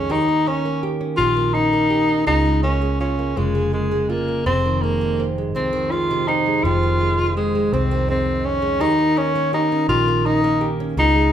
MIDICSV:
0, 0, Header, 1, 4, 480
1, 0, Start_track
1, 0, Tempo, 724638
1, 67, Time_signature, 6, 3, 24, 8
1, 7501, End_track
2, 0, Start_track
2, 0, Title_t, "Tenor saxophone"
2, 0, Program_c, 0, 66
2, 0, Note_on_c, 0, 61, 83
2, 73, Note_on_c, 0, 63, 104
2, 83, Note_off_c, 0, 61, 0
2, 312, Note_on_c, 0, 61, 83
2, 322, Note_off_c, 0, 63, 0
2, 550, Note_off_c, 0, 61, 0
2, 775, Note_on_c, 0, 65, 96
2, 1019, Note_on_c, 0, 63, 93
2, 1029, Note_off_c, 0, 65, 0
2, 1499, Note_off_c, 0, 63, 0
2, 1503, Note_on_c, 0, 63, 98
2, 1729, Note_off_c, 0, 63, 0
2, 1743, Note_on_c, 0, 61, 85
2, 1970, Note_off_c, 0, 61, 0
2, 1991, Note_on_c, 0, 61, 74
2, 2233, Note_on_c, 0, 56, 74
2, 2243, Note_off_c, 0, 61, 0
2, 2471, Note_off_c, 0, 56, 0
2, 2475, Note_on_c, 0, 56, 73
2, 2713, Note_on_c, 0, 58, 67
2, 2723, Note_off_c, 0, 56, 0
2, 2953, Note_off_c, 0, 58, 0
2, 2957, Note_on_c, 0, 60, 89
2, 3195, Note_on_c, 0, 58, 81
2, 3205, Note_off_c, 0, 60, 0
2, 3498, Note_off_c, 0, 58, 0
2, 3678, Note_on_c, 0, 60, 76
2, 3916, Note_on_c, 0, 65, 86
2, 3926, Note_off_c, 0, 60, 0
2, 4160, Note_on_c, 0, 63, 78
2, 4170, Note_off_c, 0, 65, 0
2, 4399, Note_on_c, 0, 65, 103
2, 4409, Note_off_c, 0, 63, 0
2, 4874, Note_off_c, 0, 65, 0
2, 4878, Note_on_c, 0, 56, 77
2, 5121, Note_on_c, 0, 60, 93
2, 5131, Note_off_c, 0, 56, 0
2, 5358, Note_off_c, 0, 60, 0
2, 5363, Note_on_c, 0, 60, 76
2, 5598, Note_on_c, 0, 61, 90
2, 5608, Note_off_c, 0, 60, 0
2, 5833, Note_on_c, 0, 63, 109
2, 5843, Note_off_c, 0, 61, 0
2, 6078, Note_on_c, 0, 61, 90
2, 6088, Note_off_c, 0, 63, 0
2, 6313, Note_off_c, 0, 61, 0
2, 6319, Note_on_c, 0, 63, 84
2, 6537, Note_off_c, 0, 63, 0
2, 6550, Note_on_c, 0, 65, 96
2, 6796, Note_on_c, 0, 63, 88
2, 6806, Note_off_c, 0, 65, 0
2, 7093, Note_off_c, 0, 63, 0
2, 7278, Note_on_c, 0, 63, 102
2, 7501, Note_off_c, 0, 63, 0
2, 7501, End_track
3, 0, Start_track
3, 0, Title_t, "Nylon-string guitar"
3, 0, Program_c, 1, 24
3, 0, Note_on_c, 1, 41, 69
3, 0, Note_on_c, 1, 51, 55
3, 0, Note_on_c, 1, 56, 53
3, 64, Note_off_c, 1, 51, 0
3, 64, Note_on_c, 1, 51, 74
3, 72, Note_on_c, 1, 67, 61
3, 113, Note_off_c, 1, 56, 0
3, 116, Note_off_c, 1, 41, 0
3, 189, Note_on_c, 1, 58, 54
3, 312, Note_on_c, 1, 61, 53
3, 430, Note_off_c, 1, 58, 0
3, 433, Note_on_c, 1, 58, 56
3, 542, Note_off_c, 1, 67, 0
3, 550, Note_on_c, 1, 67, 58
3, 664, Note_off_c, 1, 61, 0
3, 667, Note_on_c, 1, 61, 54
3, 783, Note_off_c, 1, 67, 0
3, 784, Note_off_c, 1, 51, 0
3, 792, Note_on_c, 1, 51, 69
3, 792, Note_on_c, 1, 67, 61
3, 903, Note_off_c, 1, 58, 0
3, 905, Note_on_c, 1, 58, 57
3, 1022, Note_off_c, 1, 61, 0
3, 1025, Note_on_c, 1, 61, 49
3, 1142, Note_off_c, 1, 58, 0
3, 1145, Note_on_c, 1, 58, 67
3, 1252, Note_off_c, 1, 67, 0
3, 1260, Note_on_c, 1, 67, 58
3, 1379, Note_off_c, 1, 61, 0
3, 1382, Note_on_c, 1, 61, 47
3, 1499, Note_off_c, 1, 51, 0
3, 1501, Note_on_c, 1, 49, 67
3, 1504, Note_off_c, 1, 67, 0
3, 1508, Note_on_c, 1, 65, 60
3, 1624, Note_off_c, 1, 58, 0
3, 1626, Note_on_c, 1, 56, 54
3, 1744, Note_off_c, 1, 61, 0
3, 1747, Note_on_c, 1, 58, 52
3, 1863, Note_off_c, 1, 56, 0
3, 1865, Note_on_c, 1, 56, 53
3, 1987, Note_off_c, 1, 65, 0
3, 1990, Note_on_c, 1, 65, 50
3, 2104, Note_off_c, 1, 58, 0
3, 2112, Note_on_c, 1, 58, 50
3, 2224, Note_off_c, 1, 49, 0
3, 2232, Note_off_c, 1, 65, 0
3, 2232, Note_on_c, 1, 49, 63
3, 2235, Note_on_c, 1, 65, 51
3, 2348, Note_off_c, 1, 56, 0
3, 2351, Note_on_c, 1, 56, 58
3, 2463, Note_off_c, 1, 58, 0
3, 2471, Note_on_c, 1, 58, 43
3, 2590, Note_off_c, 1, 56, 0
3, 2593, Note_on_c, 1, 56, 61
3, 2710, Note_off_c, 1, 65, 0
3, 2713, Note_on_c, 1, 65, 55
3, 2829, Note_off_c, 1, 58, 0
3, 2837, Note_on_c, 1, 58, 48
3, 2955, Note_off_c, 1, 65, 0
3, 2955, Note_on_c, 1, 41, 66
3, 2957, Note_on_c, 1, 60, 58
3, 3004, Note_off_c, 1, 49, 0
3, 3004, Note_off_c, 1, 58, 0
3, 3080, Note_off_c, 1, 56, 0
3, 3083, Note_on_c, 1, 51, 52
3, 3203, Note_on_c, 1, 56, 53
3, 3319, Note_on_c, 1, 48, 58
3, 3433, Note_off_c, 1, 60, 0
3, 3441, Note_on_c, 1, 60, 50
3, 3557, Note_off_c, 1, 56, 0
3, 3565, Note_on_c, 1, 56, 47
3, 3673, Note_off_c, 1, 41, 0
3, 3679, Note_off_c, 1, 60, 0
3, 3681, Note_on_c, 1, 41, 74
3, 3687, Note_on_c, 1, 60, 58
3, 3791, Note_off_c, 1, 51, 0
3, 3794, Note_on_c, 1, 51, 61
3, 3914, Note_off_c, 1, 56, 0
3, 3922, Note_on_c, 1, 56, 46
3, 4037, Note_off_c, 1, 48, 0
3, 4045, Note_on_c, 1, 48, 65
3, 4153, Note_off_c, 1, 60, 0
3, 4161, Note_on_c, 1, 60, 56
3, 4272, Note_off_c, 1, 56, 0
3, 4280, Note_on_c, 1, 56, 54
3, 4397, Note_off_c, 1, 41, 0
3, 4399, Note_off_c, 1, 60, 0
3, 4405, Note_on_c, 1, 41, 68
3, 4411, Note_on_c, 1, 60, 59
3, 4521, Note_off_c, 1, 51, 0
3, 4524, Note_on_c, 1, 51, 53
3, 4632, Note_off_c, 1, 56, 0
3, 4640, Note_on_c, 1, 56, 57
3, 4754, Note_off_c, 1, 48, 0
3, 4762, Note_on_c, 1, 48, 57
3, 4874, Note_off_c, 1, 60, 0
3, 4882, Note_on_c, 1, 60, 55
3, 4994, Note_off_c, 1, 56, 0
3, 5002, Note_on_c, 1, 56, 52
3, 5116, Note_off_c, 1, 41, 0
3, 5119, Note_off_c, 1, 60, 0
3, 5123, Note_on_c, 1, 41, 79
3, 5127, Note_on_c, 1, 60, 63
3, 5239, Note_off_c, 1, 51, 0
3, 5242, Note_on_c, 1, 51, 65
3, 5347, Note_off_c, 1, 56, 0
3, 5355, Note_on_c, 1, 56, 51
3, 5477, Note_off_c, 1, 48, 0
3, 5600, Note_off_c, 1, 60, 0
3, 5703, Note_off_c, 1, 56, 0
3, 5711, Note_on_c, 1, 56, 62
3, 5832, Note_off_c, 1, 51, 0
3, 5832, Note_on_c, 1, 51, 80
3, 5836, Note_on_c, 1, 67, 67
3, 5879, Note_off_c, 1, 56, 0
3, 5884, Note_off_c, 1, 41, 0
3, 5953, Note_on_c, 1, 58, 53
3, 6074, Note_on_c, 1, 61, 57
3, 6194, Note_off_c, 1, 58, 0
3, 6196, Note_on_c, 1, 58, 65
3, 6305, Note_off_c, 1, 67, 0
3, 6313, Note_on_c, 1, 67, 64
3, 6436, Note_off_c, 1, 61, 0
3, 6438, Note_on_c, 1, 61, 56
3, 6544, Note_off_c, 1, 51, 0
3, 6550, Note_off_c, 1, 67, 0
3, 6552, Note_on_c, 1, 51, 76
3, 6557, Note_on_c, 1, 67, 65
3, 6674, Note_off_c, 1, 58, 0
3, 6677, Note_on_c, 1, 58, 59
3, 6794, Note_off_c, 1, 61, 0
3, 6797, Note_on_c, 1, 61, 52
3, 6913, Note_off_c, 1, 58, 0
3, 6915, Note_on_c, 1, 58, 67
3, 7020, Note_off_c, 1, 67, 0
3, 7028, Note_on_c, 1, 67, 61
3, 7152, Note_off_c, 1, 61, 0
3, 7155, Note_on_c, 1, 61, 59
3, 7266, Note_off_c, 1, 51, 0
3, 7267, Note_off_c, 1, 67, 0
3, 7269, Note_on_c, 1, 49, 69
3, 7273, Note_on_c, 1, 65, 60
3, 7387, Note_off_c, 1, 58, 0
3, 7390, Note_on_c, 1, 56, 58
3, 7501, Note_off_c, 1, 49, 0
3, 7501, Note_off_c, 1, 56, 0
3, 7501, Note_off_c, 1, 61, 0
3, 7501, Note_off_c, 1, 65, 0
3, 7501, End_track
4, 0, Start_track
4, 0, Title_t, "Fingered electric bass"
4, 0, Program_c, 2, 33
4, 0, Note_on_c, 2, 36, 81
4, 67, Note_off_c, 2, 36, 0
4, 67, Note_on_c, 2, 39, 86
4, 760, Note_off_c, 2, 39, 0
4, 785, Note_on_c, 2, 34, 83
4, 1480, Note_off_c, 2, 34, 0
4, 1509, Note_on_c, 2, 37, 87
4, 2205, Note_off_c, 2, 37, 0
4, 2233, Note_on_c, 2, 29, 78
4, 2929, Note_off_c, 2, 29, 0
4, 2956, Note_on_c, 2, 29, 87
4, 3679, Note_off_c, 2, 29, 0
4, 3679, Note_on_c, 2, 36, 85
4, 4372, Note_off_c, 2, 36, 0
4, 4398, Note_on_c, 2, 29, 92
4, 5090, Note_off_c, 2, 29, 0
4, 5118, Note_on_c, 2, 36, 80
4, 5833, Note_off_c, 2, 36, 0
4, 5833, Note_on_c, 2, 39, 104
4, 6523, Note_off_c, 2, 39, 0
4, 6549, Note_on_c, 2, 34, 88
4, 7241, Note_off_c, 2, 34, 0
4, 7269, Note_on_c, 2, 37, 106
4, 7501, Note_off_c, 2, 37, 0
4, 7501, End_track
0, 0, End_of_file